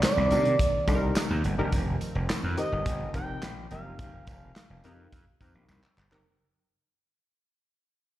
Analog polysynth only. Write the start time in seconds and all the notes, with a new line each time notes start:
0.31 D4 D#4 G4 A#4
0.88 D4 D#4 G4 A4
0.95 A#4
1.58 D4 D#4 G4 A#4
2.57 C4 D#4 G4 A#4
3.14 C4 D#4 G4 A#4
3.71 C4 D#4 G4 A#4
4.84 C4 D#4 G4 A#4
5.41 C4 D#4 G4 A#4
6.11 C4 D#4 G4 A#4